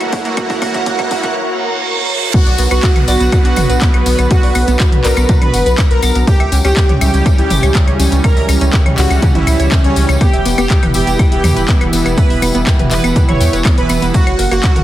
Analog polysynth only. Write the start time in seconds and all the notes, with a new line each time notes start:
Already playing: F#4
0.25 F#4
0.37 F#4
0.62 F#4
0.87 F#4
1.11 F#4
2.34 F#4
2.71 F#4
3.08 F#4
3.45 F#4
4.31 F#4
5.04 A#4
5.42 B4
5.91 A#4
6.27 G4
6.65 G4
7.01 G4
7.38 G4
8.24 A#4
8.98 F#4
9.35 E4
9.84 C#4
10.21 G4
10.58 G4
10.95 G4
11.32 G4
12.18 B4
12.91 B4
13.29 C#5
13.78 B4
14.14 F#4
14.52 F#4